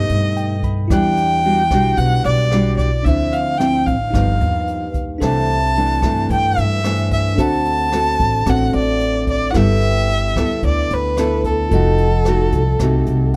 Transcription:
Already playing: nylon-string guitar B2 A3 D#4 G4, tine electric piano D#4 A4 B4 G5, violin D#5
0.09 upright bass G2, closed hi-hat
0.37 tine electric piano G5, closed hi-hat
0.63 tine electric piano B5, kick, closed hi-hat
0.88 upright bass E2, nylon-string guitar E3 G3, tine electric piano E4, kick, cross-stick, closed hi-hat
0.92 nylon-string guitar D4, tine electric piano D5 F#6, violin G5
1.17 closed hi-hat
1.44 nylon-string guitar G3 D4 F#4, closed hi-hat
1.71 upright bass B1, nylon-string guitar G3 D4 F#4, kick, cross-stick, closed hi-hat
1.97 upright bass B1, nylon-string guitar B2, violin F#5, kick, closed hi-hat
2.24 upright bass B1, violin D5, closed hi-hat
2.51 nylon-string guitar G3 D4 F#4, cross-stick, closed hi-hat
2.77 violin D5, kick, closed hi-hat
3.03 upright bass D2, nylon-string guitar D3 F3 C4 E4, tine electric piano D4, violin E5, kick, closed hi-hat
3.07 tine electric piano C5 E5
3.32 violin F5, closed hi-hat
3.58 nylon-string guitar F3 C4 E4, violin G5, cross-stick, closed hi-hat
3.86 upright bass A1, violin F5, kick, closed hi-hat
4.10 upright bass G1, nylon-string guitar G2 F3 B3 D#4, tine electric piano D#4 G4 B4, kick, cross-stick, closed hi-hat
4.17 tine electric piano F5
4.41 upright bass D#2, closed hi-hat
4.67 closed hi-hat
4.94 kick, closed hi-hat
5.18 upright bass C2, nylon-string guitar C3, tine electric piano D4 A4, kick, cross-stick, closed hi-hat
5.22 nylon-string guitar E3 A3 D4, tine electric piano C5 E5, violin A5
5.48 closed hi-hat
5.75 nylon-string guitar E3 A3 D4, closed hi-hat
6.02 upright bass G2, nylon-string guitar E3 A3 D4, kick, cross-stick, closed hi-hat
6.30 nylon-string guitar G2, upright bass G2, violin G5, kick, closed hi-hat
6.57 upright bass G2, violin E5, closed hi-hat
6.83 nylon-string guitar E3 A3 D4, tine electric piano D4 A4 C5 E5, cross-stick, closed hi-hat
7.11 violin E5, kick, closed hi-hat
7.36 upright bass D2, nylon-string guitar D3 C4 F#4 A4, tine electric piano D4 A4 C5, kick, closed hi-hat
7.40 tine electric piano F#5, violin A5
7.65 closed hi-hat
7.92 nylon-string guitar C4 F#4 A4, cross-stick, closed hi-hat
8.19 upright bass A1, kick, closed hi-hat
8.46 upright bass A1, nylon-string guitar A2 C4 F#4 A4, violin F#5, kick, cross-stick, closed hi-hat
8.73 upright bass A1, violin D5, closed hi-hat
9.00 closed hi-hat
9.27 violin D5, kick, closed hi-hat
9.50 tine electric piano E4 A4, violin F#5, kick, cross-stick, closed hi-hat
9.55 upright bass G1, nylon-string guitar G3 B3 E4 A4, tine electric piano B4 G5, violin E5
9.81 closed hi-hat
10.09 closed hi-hat
10.36 upright bass D2, nylon-string guitar B3 E4 A4, kick, cross-stick, closed hi-hat
10.62 upright bass D2, nylon-string guitar D3, violin D5, kick, closed hi-hat
10.90 upright bass D2, violin B4, closed hi-hat
11.17 nylon-string guitar B3 E4 A4, cross-stick, closed hi-hat
11.44 violin A4, kick, closed hi-hat
11.69 upright bass F1, nylon-string guitar F3 A3 D#4, tine electric piano F4 A4, kick, closed hi-hat
11.73 nylon-string guitar F#4, tine electric piano D#5 F#5
11.98 closed hi-hat
12.25 nylon-string guitar A3 D#4 F#4, cross-stick, closed hi-hat
12.52 upright bass C2, kick, closed hi-hat
12.79 upright bass C2, nylon-string guitar C3 A3 D#4 F#4, kick, cross-stick, closed hi-hat
13.06 upright bass C2, closed hi-hat

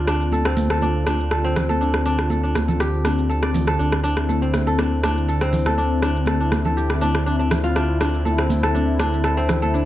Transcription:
Already playing: analog synth bass D2, analog synth pad D3 C4 F4, kora F4 G4
0.07 kora D4, cross-stick, open hi-hat, shaker
0.21 shaker
0.32 kora A4, high conga, shaker
0.45 kora C4, cross-stick, shaker
0.57 open hi-hat, high conga, shaker
0.70 kora A4, cross-stick, shaker
0.82 kora D4, high conga, shaker
1.07 kora D4, cross-stick, open hi-hat, high conga, shaker
1.20 shaker
1.31 kora A4, cross-stick, shaker
1.44 kora C4, shaker
1.56 cross-stick, open hi-hat, low conga, shaker
1.69 kora A4, high conga, shaker
1.81 kora D4, shaker
1.94 cross-stick
2.06 kora D4, open hi-hat, shaker
2.19 cross-stick, shaker
2.30 kora A4, high conga, shaker
2.43 kora D4, shaker
2.55 cross-stick, open hi-hat, high conga, shaker
2.68 kora A4, low conga, shaker
2.80 kora G4, cross-stick, shaker
3.05 kora D4, cross-stick, open hi-hat, high conga, shaker
3.19 shaker
3.29 kora A4, shaker
3.43 kora D5, cross-stick, shaker
3.54 open hi-hat, high conga, low conga, shaker
3.67 kora A4, cross-stick, shaker
3.79 analog synth bass D2, kora D4, analog synth pad E4, shaker
3.92 cross-stick
4.04 kora D4, open hi-hat, shaker
4.17 cross-stick, shaker
4.29 kora A4, high conga, shaker
4.42 kora C4, shaker
4.54 cross-stick, open hi-hat, high conga, shaker
4.67 kora A4, shaker
4.79 kora D4, cross-stick, high conga, shaker
5.03 kora D4, cross-stick, open hi-hat, high conga, shaker
5.17 shaker
5.28 kora A4, shaker
5.41 kora C4, cross-stick, shaker
5.53 open hi-hat, low conga, shaker
5.66 kora A4, cross-stick, high conga, shaker
5.78 kora D4, shaker
6.02 kora D4, cross-stick, open hi-hat, shaker
6.16 shaker
6.26 kora A4, cross-stick, high conga, shaker
6.40 kora D4, shaker
6.52 cross-stick, open hi-hat, high conga, shaker
6.65 kora A4, low conga, shaker
6.77 kora G4, shaker
6.90 cross-stick
7.01 kora D4, open hi-hat, high conga, shaker
7.15 cross-stick, shaker
7.26 kora D4, shaker
7.39 kora D4, shaker
7.51 cross-stick, open hi-hat, high conga, low conga, shaker
7.64 kora F4, shaker
7.76 kora D4, cross-stick, shaker
8.00 kora D4, cross-stick, open hi-hat, shaker
8.14 shaker
8.25 kora A4, high conga, shaker
8.38 kora C4, cross-stick, shaker
8.50 open hi-hat, high conga, shaker
8.63 kora A4, cross-stick, shaker
8.75 kora D4, high conga, shaker
8.99 kora D4, cross-stick, open hi-hat, high conga, shaker
9.13 shaker
9.24 kora A4, cross-stick, shaker
9.37 kora C4, shaker
9.49 cross-stick, open hi-hat, low conga, shaker
9.62 kora A4, high conga, shaker
9.74 kora D4, shaker

